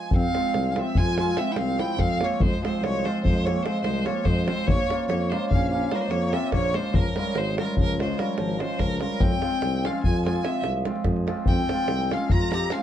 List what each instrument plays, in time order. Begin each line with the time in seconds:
Already playing: hammered dulcimer F3 G#3, violin G#5
0.11 tuba F2, davul low
0.15 clarinet C4, violin F5
0.23 davul high
0.35 hammered dulcimer F3 G#3 C4 F4, davul high
0.54 tuba C2, davul high
0.71 clarinet C#4, violin F5
0.76 hammered dulcimer F3 G#3 C4 F4, clarinet C4, violin E5, davul high
0.86 davul high
0.95 tuba F2, clarinet F4, violin G#5, davul low
1.07 davul high
1.18 hammered dulcimer F3 G#3 C4 F4, clarinet F4, violin G#5, davul high
1.37 hammered dulcimer F3 G#3 C4 F4, clarinet C4, violin E5, davul high
1.46 davul high
1.51 clarinet E4, violin G5
1.56 tuba C2, clarinet C4, violin F5, davul high
1.68 davul high
1.78 hammered dulcimer F3 G#3 C4 F4, clarinet E4, violin G5, davul high
1.89 davul high
1.97 tuba F2, clarinet C4, violin F5, davul high, davul low
2.10 davul high
2.20 hammered dulcimer F3 G#3 C4 F4, clarinet A#3, violin C#5, davul high
2.32 davul high
2.40 tuba F2, clarinet G#3, violin C5, davul low
2.53 davul high
2.62 hammered dulcimer F3 G#3 C4 F4, clarinet G#3, violin C5, davul high
2.74 davul high
2.81 tuba C2, clarinet G#3, violin C#5, davul high
3.04 hammered dulcimer F3 G#3 C4 F4, clarinet G#3, violin C5, davul high
3.15 davul high
3.24 tuba F2, clarinet G#3, violin C5, davul low
3.37 davul high
3.44 hammered dulcimer F3 G#3 C4 F4, clarinet A#3, violin C#5, davul high
3.63 hammered dulcimer F3 G#3 C4 F4, violin C5, davul high
3.67 clarinet G#3
3.82 tuba C2, clarinet G#3, violin C5, davul high
3.95 davul high
4.04 hammered dulcimer F3 G#3 C4 F4, clarinet A#3, violin C#5, davul high
4.16 davul high
4.25 tuba F2, clarinet G#3, violin C5, davul high, davul low
4.37 davul high
4.46 hammered dulcimer F3 G#3 C4 F4, violin C5, davul high
4.51 clarinet G#3
4.58 davul high
4.66 tuba A#1, clarinet A#3, violin C#5, davul low
4.79 davul high
4.89 hammered dulcimer F3 A#3 C#4 F4, davul high
5.00 davul high
5.08 tuba F2, clarinet A#3, violin C#5, davul high
5.29 hammered dulcimer F3 A#3 C#4 F4, clarinet G#3, violin C5, davul high
5.42 davul high
5.50 tuba A#1, clarinet C#4, violin F5, davul low
5.63 davul high
5.70 hammered dulcimer F3 A#3 C#4 F4, clarinet C#4, violin F5
5.91 hammered dulcimer F3 A#3 C#4 F4, clarinet G#3, violin C5, davul high
5.95 clarinet G3, violin A#4
6.00 clarinet G#3, violin C5, davul high
6.09 tuba F2, clarinet A#3, violin C#5, davul high
6.32 hammered dulcimer F3 A#3 C#4 F4, clarinet C4, violin E5, davul high
6.43 davul high
6.52 tuba A#1, clarinet A#3, violin C#5, davul high, davul low
6.63 davul high
6.74 hammered dulcimer F3 A#3 C#4 F4, clarinet G#3, violin C5, davul high
6.85 davul high
6.93 tuba C#2, clarinet F3, violin A#4, davul low
7.16 hammered dulcimer F3 G#3 C#4 F4, clarinet G3, violin A#4, davul high
7.26 davul high
7.35 tuba G#1, clarinet G#3, violin C5, davul high
7.47 davul high
7.58 hammered dulcimer F3 G#3 C#4 F4, clarinet G3, violin A#4, davul high
7.69 davul high
7.77 tuba C#2, clarinet F3, violin A#4, davul low
7.89 davul high
7.99 hammered dulcimer F3 G#3 C#4 F4, clarinet G#3, violin C5, davul high
8.09 davul high
8.18 hammered dulcimer F3 G#3 C#4 F4, clarinet G3, violin A#4, davul high
8.29 davul high
8.37 tuba G#1, clarinet F3, violin A#4, davul high
8.48 davul high
8.59 hammered dulcimer F3 G#3 C#4 F4, clarinet G#3, violin C5, davul high
8.70 davul high
8.79 tuba C#2, clarinet F3, violin A#4, davul high, davul low
8.91 davul high
9.00 hammered dulcimer F3 G#3 C#4 F4, clarinet G3, violin A#4, davul high
9.12 davul high
9.20 tuba F2, clarinet C4, violin G5, davul low
9.32 davul high
9.42 hammered dulcimer F3 G#3 C4 F4, davul high
9.53 davul high
9.62 tuba C2, davul high
9.84 hammered dulcimer F3 G#3 C4 F4, clarinet C#4, violin F5, davul high
9.95 davul high
10.04 tuba F2, clarinet F4, violin G#5, davul low
10.16 davul high
10.24 hammered dulcimer F3 G#3 C4 F4, clarinet F4, violin G#5, davul high
10.44 hammered dulcimer F3 G#3 C4 F4, clarinet C4, violin E5, davul high
10.55 davul high
10.63 tuba C2, davul high
10.74 davul high
10.85 hammered dulcimer F3 G#3 C4 F4, davul high
10.96 davul high
11.04 tuba F2, davul high, davul low
11.16 davul high
11.27 hammered dulcimer F3 G#3 C4 F4, davul high
11.37 davul high
11.46 tuba F2, clarinet C4, violin G5, davul low
11.58 davul high
11.69 hammered dulcimer F3 G#3 C4 F4, davul high
11.78 davul high
11.88 tuba C2, davul high
12.11 hammered dulcimer F3 G#3 C4 F4, clarinet C#4, violin F5, davul high
12.21 davul high
12.30 tuba F2, clarinet F4, violin A#5, davul low
12.41 davul high
12.52 hammered dulcimer F3 G#3 C4 F4, clarinet G4, violin A#5, davul high
12.70 hammered dulcimer F3 G#3 C4 F4, clarinet C#4, violin F5, davul high